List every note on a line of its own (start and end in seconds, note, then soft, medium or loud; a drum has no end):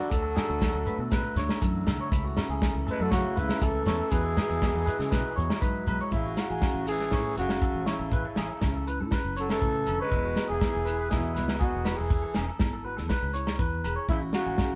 0.00 0.16 D3 medium
0.00 2.08 D3 medium
0.00 2.08 F#3 medium
0.00 4.08 A3 medium
0.00 0.11 F#4 medium
0.00 0.12 F#4 medium
0.00 0.10 A4 medium
0.10 0.35 D2 loud
0.10 0.56 D3 medium
0.10 0.62 F#4 medium
0.10 1.11 A4 medium
0.10 muted clean electric guitar stroke medium
0.10 kick medium
0.10 shekere medium
0.15 1.13 F#3 medium
0.23 0.35 A4 medium
0.35 1.37 D4 medium
0.35 0.48 G#4 medium
0.35 snare medium
0.35 low agogo medium
0.35 shekere medium
0.48 0.73 D2 medium
0.48 0.72 A4 medium
0.62 1.07 F#3 medium
0.62 2.13 F#4 medium
0.62 kick medium
0.62 snare medium
0.62 low agogo medium
0.62 shekere medium
0.74 0.86 D2 medium
0.74 0.86 A4 medium
0.86 2.87 A3 medium
0.86 0.99 B4 medium
0.86 shekere medium
0.98 1.22 B2 medium
0.98 1.11 A4 medium
1.11 1.57 A2 medium
1.11 1.36 B4 medium
1.11 kick medium
1.11 snare medium
1.11 low agogo medium
1.11 shekere medium
1.36 1.48 D2 loud
1.36 2.09 D4 medium
1.36 1.61 C#5 medium
1.36 snare soft
1.36 shekere loud
1.49 snare medium
1.49 low agogo medium
1.49 shekere soft
1.62 1.85 F#2 medium
1.62 1.87 E3 medium
1.62 1.86 A4 medium
1.62 kick medium
1.62 shekere medium
1.86 1.98 C2 medium
1.86 2.12 D3 medium
1.86 1.99 A4 medium
1.86 snare medium
1.86 low agogo medium
1.86 shekere loud
2.01 2.11 C#5 medium
2.11 2.35 C#2 loud
2.11 4.10 C#3 medium
2.11 2.57 C#3 medium
2.11 6.08 E3 medium
2.11 2.24 E4 medium
2.11 2.62 A4 medium
2.11 kick medium
2.11 shekere medium
2.24 2.48 F#4 medium
2.37 3.38 C#4 medium
2.37 snare medium
2.37 low agogo medium
2.37 shekere loud
2.49 2.73 C#2 medium
2.49 2.74 G#4 medium
2.62 3.07 E3 medium
2.62 4.10 A4 medium
2.62 kick medium
2.62 snare medium
2.62 low agogo medium
2.62 shekere medium
2.75 2.86 C#2 medium
2.87 4.13 A3 medium
2.87 2.99 A4 medium
2.87 3.03 B4 medium
2.87 shekere medium
2.91 3.05 G#3 medium
3.00 3.23 F#2 medium
3.00 3.14 F#3 medium
3.00 3.10 A4 medium
3.00 3.12 A4 medium
3.11 3.57 C#3 medium
3.11 3.40 F#4 medium
3.11 3.35 C#5 medium
3.11 kick medium
3.11 snare medium
3.11 low agogo medium
3.11 shekere medium
3.16 3.39 C#3 medium
3.36 3.49 C#2 medium
3.36 3.64 C#3 medium
3.36 3.62 C#4 medium
3.36 3.65 E4 medium
3.36 3.60 B4 medium
3.36 shekere loud
3.49 snare medium
3.49 low agogo medium
3.49 shekere soft
3.61 3.85 C#2 medium
3.61 4.07 E3 medium
3.61 4.11 E3 medium
3.61 3.86 C#4 medium
3.61 3.85 A4 medium
3.61 4.12 A4 loud
3.61 kick medium
3.61 shekere medium
3.86 3.99 E2 medium
3.86 4.12 C#4 medium
3.86 3.99 C#5 medium
3.86 snare medium
3.86 low agogo medium
3.86 shekere loud
3.99 4.11 A4 medium
4.11 4.35 E2 loud
4.11 5.62 E3 medium
4.11 4.57 E3 medium
4.11 6.10 F#3 medium
4.11 6.10 G#3 medium
4.11 4.38 F#4 medium
4.11 5.62 G#4 loud
4.11 4.23 B4 medium
4.11 kick medium
4.11 shekere medium
4.24 4.36 A4 medium
4.37 4.62 F#4 medium
4.37 4.49 G#4 medium
4.37 snare medium
4.37 low agogo medium
4.37 shekere medium
4.49 4.73 E2 medium
4.49 4.73 A4 medium
4.49 shekere soft
4.62 5.08 B3 medium
4.62 5.37 F#4 medium
4.62 kick medium
4.62 snare medium
4.62 low agogo medium
4.62 shekere medium
4.74 4.86 E2 medium
4.74 4.86 A4 medium
4.86 6.10 E4 medium
4.86 4.99 B4 medium
4.86 shekere medium
4.99 5.23 C#3 medium
4.99 5.11 A4 medium
4.99 snare soft
4.99 shekere soft
5.11 5.58 B2 medium
5.11 5.36 B4 medium
5.11 kick medium
5.11 snare medium
5.11 low agogo medium
5.11 shekere medium
5.36 5.49 E2 loud
5.36 6.13 F#4 medium
5.36 5.60 C#5 medium
5.36 shekere medium
5.50 snare medium
5.50 low agogo medium
5.61 5.86 G#2 medium
5.61 5.88 F#3 medium
5.61 5.85 B4 medium
5.61 kick medium
5.61 shekere medium
5.87 5.99 B1 medium
5.87 6.13 G#3 medium
5.87 5.99 B4 medium
5.87 low agogo medium
5.87 shekere medium
6.00 6.12 C#5 medium
6.00 shekere soft
6.12 6.36 A1 medium
6.12 6.58 A2 medium
6.12 6.40 C#3 medium
6.12 6.41 E4 medium
6.12 6.25 E4 medium
6.12 kick medium
6.12 shekere medium
6.26 6.49 F#4 medium
6.37 6.89 C#3 medium
6.37 6.86 E4 medium
6.37 6.88 F#4 medium
6.37 snare medium
6.37 low agogo medium
6.37 shekere medium
6.50 6.62 A1 medium
6.50 6.74 G#4 medium
6.60 7.06 E3 medium
6.60 7.37 C#4 medium
6.60 kick medium
6.60 snare medium
6.60 low agogo medium
6.60 shekere medium
6.74 7.13 A1 medium
6.87 7.36 E3 medium
6.87 8.88 E4 medium
6.87 7.34 G#4 medium
6.87 muted clean electric guitar stroke medium
6.87 shekere medium
6.99 7.12 A4 medium
6.99 snare soft
7.11 7.38 A2 medium
7.11 7.57 A2 medium
7.11 7.36 C#5 medium
7.11 kick medium
7.11 snare medium
7.11 low agogo medium
7.11 shekere medium
7.37 7.72 F#1 medium
7.37 7.90 C#3 medium
7.37 7.87 C#4 medium
7.37 7.88 F#4 medium
7.37 muted clean electric guitar stroke medium
7.37 shekere medium
7.49 snare medium
7.49 low agogo medium
7.62 8.08 E3 medium
7.62 7.86 A4 medium
7.62 kick medium
7.62 shekere medium
7.74 7.98 A1 medium
7.86 8.89 C#3 medium
7.86 8.10 C#4 medium
7.86 8.87 E4 medium
7.86 7.99 C#5 medium
7.86 snare medium
7.86 low agogo medium
7.86 shekere medium
7.99 8.23 A1 medium
7.99 8.11 A4 medium
8.11 8.57 A2 medium
8.11 8.24 B4 medium
8.11 kick medium
8.11 shekere medium
8.25 8.37 A4 medium
8.36 8.49 A1 medium
8.36 8.49 G#4 medium
8.36 snare medium
8.36 low agogo medium
8.36 shekere medium
8.51 8.74 A4 medium
8.61 9.02 C#2 medium
8.61 9.07 E3 medium
8.61 9.38 C#4 medium
8.61 kick medium
8.61 snare medium
8.61 low agogo medium
8.61 shekere medium
8.75 8.87 A4 medium
8.87 10.14 E4 medium
8.87 8.99 B4 medium
8.87 shekere medium
9.00 9.12 A2 medium
9.00 9.12 A4 medium
9.11 9.36 B4 medium
9.11 muted clean electric guitar stroke medium
9.11 kick medium
9.11 snare medium
9.11 low agogo medium
9.11 shekere medium
9.25 9.60 F#1 medium
9.37 9.50 F#3 medium
9.37 10.10 C#4 medium
9.37 9.50 A4 medium
9.37 9.61 C#5 medium
9.37 shekere medium
9.49 9.97 E3 medium
9.49 9.97 A4 medium
9.49 snare medium
9.49 low agogo medium
9.62 9.85 A2 medium
9.62 9.87 C#3 medium
9.62 9.86 A4 medium
9.62 kick medium
9.62 shekere medium
9.86 9.99 F1 medium
9.86 10.13 D3 medium
9.86 9.99 A4 medium
9.86 low agogo medium
9.86 shekere medium
10.00 10.47 G#3 medium
10.00 10.47 B4 loud
10.00 10.11 C#5 medium
10.11 10.35 E1 medium
10.11 10.57 E3 medium
10.11 10.63 B3 medium
10.11 10.24 E4 medium
10.11 10.63 E4 medium
10.11 muted clean electric guitar stroke medium
10.11 kick medium
10.11 shekere medium
10.24 10.48 F#4 medium
10.36 12.08 G#4 medium
10.36 snare medium
10.36 low agogo medium
10.36 shekere medium
10.48 10.61 E1 medium
10.48 11.09 E3 medium
10.48 10.72 G#4 medium
10.48 11.08 G#4 medium
10.61 11.07 B3 medium
10.61 10.88 E4 medium
10.61 kick medium
10.61 snare medium
10.61 low agogo medium
10.61 shekere medium
10.75 11.13 E1 medium
10.85 11.86 E4 medium
10.85 10.98 B4 medium
10.85 shekere medium
10.99 11.09 B4 medium
11.10 11.38 E2 medium
11.10 11.58 B2 medium
11.10 11.57 B2 medium
11.10 11.57 E4 medium
11.10 11.34 G#4 medium
11.10 kick medium
11.10 snare medium
11.10 low agogo medium
11.10 shekere medium
11.35 11.71 C#2 medium
11.35 11.60 B3 medium
11.35 11.59 B4 medium
11.35 snare soft
11.35 shekere medium
11.48 snare medium
11.48 low agogo medium
11.59 12.02 B2 medium
11.59 12.06 B3 medium
11.59 11.98 F#4 medium
11.59 11.84 G#4 medium
11.59 kick medium
11.59 shekere medium
11.74 11.97 E1 medium
11.85 12.36 E4 medium
11.85 11.97 B4 medium
11.85 snare medium
11.85 low agogo medium
11.85 shekere medium
11.97 12.22 E1 medium
11.97 12.49 E3 medium
11.97 12.47 G#4 medium
11.97 12.10 A4 medium
12.10 12.56 E3 medium
12.10 muted clean electric guitar stroke medium
12.10 kick medium
12.10 shekere medium
12.23 12.35 A4 medium
12.35 12.48 E1 medium
12.35 12.48 C#4 medium
12.35 12.47 G#4 medium
12.35 snare medium
12.35 low agogo medium
12.35 shekere medium
12.49 12.72 A4 medium
12.59 13.00 G#1 medium
12.59 13.05 B3 medium
12.59 13.35 E4 medium
12.59 kick medium
12.59 snare medium
12.59 low agogo medium
12.59 shekere medium
12.73 12.84 A4 medium
12.85 12.98 F#4 medium
12.85 12.96 B4 medium
12.97 13.10 E2 medium
12.97 13.84 G#4 medium
12.97 13.09 A4 medium
12.97 snare soft
13.09 13.33 B4 medium
13.09 muted clean electric guitar stroke medium
13.09 kick medium
13.09 snare medium
13.09 low agogo medium
13.09 shekere medium
13.23 13.57 C#2 medium
13.33 14.34 E4 medium
13.33 13.58 C#5 medium
13.33 shekere medium
13.47 snare medium
13.47 low agogo medium
13.59 13.82 E2 medium
13.59 14.04 B3 medium
13.59 13.83 B4 medium
13.59 kick medium
13.59 shekere medium
13.84 13.96 E1 medium
13.84 14.07 G#4 medium
13.84 13.95 B4 medium
13.84 low agogo medium
13.84 shekere medium
13.96 14.08 C#5 medium
14.09 14.32 A1 medium
14.09 14.54 A2 medium
14.09 14.22 C#3 medium
14.09 14.58 E3 medium
14.09 14.59 C#4 medium
14.09 14.21 E4 medium
14.09 14.20 E4 medium
14.09 kick medium
14.09 shekere medium
14.21 14.45 F#4 medium
14.33 14.75 C#3 medium
14.33 14.75 E4 medium
14.33 14.75 F#4 medium
14.33 snare medium
14.33 low agogo medium
14.33 shekere medium
14.46 14.58 A1 medium
14.46 14.70 G#4 medium
14.58 14.75 E3 medium
14.58 14.75 C#4 medium
14.58 kick medium
14.58 snare medium
14.58 low agogo medium
14.58 shekere medium
14.72 14.75 A1 medium